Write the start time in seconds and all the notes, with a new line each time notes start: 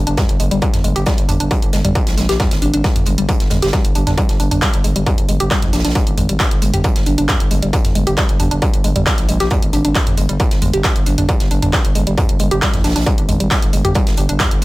0.07 G1 D4, closed hi-hat
0.17 G3, kick, snare, closed hi-hat, mid tom
0.29 G1, closed hi-hat
0.40 G1 G#3, closed hi-hat, open hi-hat
0.51 G1 G3, closed hi-hat
0.62 G3, kick, closed hi-hat
0.73 G1, snare, closed hi-hat, mid tom
0.84 G1 G#3, closed hi-hat, open hi-hat
0.96 G1 G4, closed hi-hat
1.06 G3, kick, snare, closed hi-hat
1.18 G1, closed hi-hat
1.29 G1 D4, closed hi-hat, mid tom, open hi-hat
1.40 G1 D4, closed hi-hat
1.51 G3, kick, closed hi-hat
1.62 G1, closed hi-hat
1.73 G1 G#3, snare, closed hi-hat, open hi-hat
1.85 G1 G3, closed hi-hat, mid tom
1.95 G3, kick, closed hi-hat
2.07 A#1, snare, closed hi-hat
2.18 A#1 G#3, snare, closed hi-hat, open hi-hat
2.29 A#1 G4, snare, closed hi-hat
2.40 G3, kick, snare, closed hi-hat, mid tom
2.51 G#1, snare, closed hi-hat
2.62 G#1 D4, closed hi-hat, open hi-hat
2.73 G#1 D4, closed hi-hat
2.84 G3, kick, snare, closed hi-hat
2.96 G1, closed hi-hat, mid tom
3.06 G1 G#3, closed hi-hat, open hi-hat
3.18 G1 G3, closed hi-hat
3.29 G3, kick, closed hi-hat
3.40 G1, snare, closed hi-hat
3.50 G1 G#3, snare, closed hi-hat, mid tom, open hi-hat
3.62 G1 G4, snare, closed hi-hat
3.67 snare, closed hi-hat
3.73 G3, kick, snare, closed hi-hat
3.85 G1, closed hi-hat
3.95 G1 D4, closed hi-hat, open hi-hat
4.07 G1 D4, snare, closed hi-hat, mid tom
4.17 G3, kick, closed hi-hat
4.29 G1, snare, closed hi-hat
4.40 G1 D4, closed hi-hat, open hi-hat
4.51 G1 D4, closed hi-hat, mid tom
4.62 G3, kick, snare, clap, closed hi-hat
4.73 G1, closed hi-hat
4.84 G1 G#3, closed hi-hat, open hi-hat
4.96 G1 G3, closed hi-hat
5.06 G3, kick, closed hi-hat, mid tom
5.18 G1, closed hi-hat
5.29 G1 G#3, closed hi-hat, open hi-hat
5.40 G1 G4, closed hi-hat
5.51 G3, kick, snare, clap, closed hi-hat
5.62 A#1, snare, closed hi-hat, mid tom
5.73 A#1 D4, snare, closed hi-hat, open hi-hat
5.79 snare, closed hi-hat
5.85 A#1 D4, snare, closed hi-hat
5.90 snare, closed hi-hat
5.95 G3, kick, closed hi-hat
6.07 G#1, closed hi-hat
6.17 G#1 G#3, closed hi-hat, mid tom, open hi-hat
6.29 G#1 G3, closed hi-hat
6.40 G3, kick, snare, clap, closed hi-hat
6.51 G1, closed hi-hat
6.62 G1 G#3, closed hi-hat, open hi-hat
6.74 G1 G4, closed hi-hat, mid tom
6.84 G3, kick, closed hi-hat
6.96 G1, snare, closed hi-hat
7.06 G1 D4, closed hi-hat, open hi-hat
7.18 G1 D4, closed hi-hat
7.28 G3, kick, snare, clap, closed hi-hat, mid tom
7.40 G1, closed hi-hat
7.51 G1 G#3, closed hi-hat, open hi-hat
7.62 G1 G3, closed hi-hat
7.73 G3, kick, closed hi-hat
7.85 G1, snare, closed hi-hat, mid tom
7.95 G1 G#3, closed hi-hat, open hi-hat
8.07 G1 G4, closed hi-hat
8.17 G3, kick, snare, clap, closed hi-hat
8.29 G1, closed hi-hat
8.39 G1 D4, closed hi-hat, mid tom, open hi-hat
8.51 G1 D4, closed hi-hat
8.62 G3, kick, closed hi-hat
8.74 G1, closed hi-hat
8.84 G1 G#3, closed hi-hat, open hi-hat
8.96 G1 G3, closed hi-hat, mid tom
9.06 G3, kick, snare, clap, closed hi-hat
9.18 A#1, snare, closed hi-hat
9.29 A#1 G#3, closed hi-hat, open hi-hat
9.40 A#1 G4, snare, closed hi-hat
9.50 G3, kick, closed hi-hat, mid tom
9.62 G#1, closed hi-hat
9.73 G#1 D4, closed hi-hat, open hi-hat
9.85 G#1 D4, closed hi-hat
9.95 G3, kick, snare, clap, closed hi-hat
10.07 G1, closed hi-hat, mid tom
10.17 G1 G#3, closed hi-hat, open hi-hat
10.29 G1 G3, closed hi-hat
10.40 G3, kick, closed hi-hat
10.51 G1, snare, closed hi-hat
10.62 G1 G#3, closed hi-hat, mid tom, open hi-hat
10.73 G1 G4, closed hi-hat
10.84 G3, kick, snare, clap, closed hi-hat
10.96 G1, closed hi-hat
11.06 G1 D4, closed hi-hat, open hi-hat
11.18 G1 D4, closed hi-hat, mid tom
11.29 G3, kick, closed hi-hat
11.40 G1, snare, closed hi-hat
11.51 G1 D4, closed hi-hat, open hi-hat
11.62 G1 D4, closed hi-hat, mid tom
11.73 G3, kick, snare, clap, closed hi-hat
11.85 G1, closed hi-hat
11.95 G1 G#3, closed hi-hat, open hi-hat
12.07 G1 G3, closed hi-hat
12.18 G3, kick, closed hi-hat, mid tom
12.29 G1, closed hi-hat
12.39 G1 G#3, closed hi-hat, open hi-hat
12.51 G1 G4, closed hi-hat
12.62 G3, kick, snare, clap, closed hi-hat
12.74 A#1, snare, closed hi-hat, mid tom
12.84 A#1 D4, snare, closed hi-hat, open hi-hat
12.90 snare, closed hi-hat
12.96 A#1 D4, snare, closed hi-hat
13.00 snare, closed hi-hat
13.06 G3, kick, closed hi-hat
13.18 G#1, closed hi-hat
13.29 G#1 G#3, closed hi-hat, mid tom, open hi-hat
13.40 G#1 G3, closed hi-hat
13.51 G3, kick, snare, clap, closed hi-hat
13.62 G1, closed hi-hat
13.73 G1 G#3, closed hi-hat, open hi-hat
13.85 G1 G4, closed hi-hat, mid tom
13.95 G3, kick, closed hi-hat
14.07 G1, snare, closed hi-hat
14.17 G1 D4, closed hi-hat, open hi-hat
14.29 G1 D4, closed hi-hat
14.39 G3, kick, snare, clap, closed hi-hat, mid tom
14.51 G1, closed hi-hat